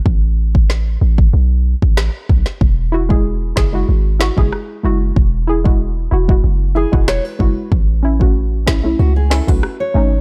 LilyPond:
<<
  \new Staff \with { instrumentName = "Steel-string acoustic guitar" } { \time 4/4 \key e \major \tempo 4 = 94 r1 | r1 | r2 r8 gis'8 cis''16 b'8. | r2 fis'16 gis'16 a'16 b'8 cis''8. | }
  \new Staff \with { instrumentName = "Synth pluck" } { \time 4/4 \key e \major r1 | r8 <e' fis'>16 <gis e' gis'>16 r8 <e' gis'>16 <gis e' fis'>16 r8 <e' fis'>16 <gis e' gis'>16 r8 <gis e' fis'>16 r16 | r8 <e' gis'>16 <gis e' fis'>16 r8 <e' fis'>16 <gis e' fis'>16 r8 <e' gis'>16 <gis e' fis'>16 r8 <gis e' fis'>16 r16 | r8 <cis' e'>16 <a cis' fis'>16 r8 <cis' e'>16 <a cis' e'>16 r8 <cis' e'>16 <a cis' fis'>16 r8 <a cis' dis'>16 r16 | }
  \new Staff \with { instrumentName = "808-style bass" } { \clef bass \time 4/4 \key e \major a,,4. a,,8 b,,8. a,,8 r16 b,,16 r16 | e,,4. fis,,8 gis,,8. fis,,16 r8 fis,,8 | e,,4. e,,8 fis,,8. e,,8 r16 fis,,16 r16 | a,,4. b,,8 cis,8. b,,16 r8 gis,,8 | }
  \new DrumStaff \with { instrumentName = "Drums" } \drummode { \time 4/4 bd8. bd16 sn8. bd16 r8. bd16 <ss sn>8 bd16 sn16 | bd8. bd16 r8 <bd sn>8 r8 sn16 bd16 ss4 | bd8. bd16 r8. bd16 r8. bd16 <ss sn>8 bd8 | bd8. bd16 r8 <bd sn>8 r8 sn16 bd16 ss4 | }
>>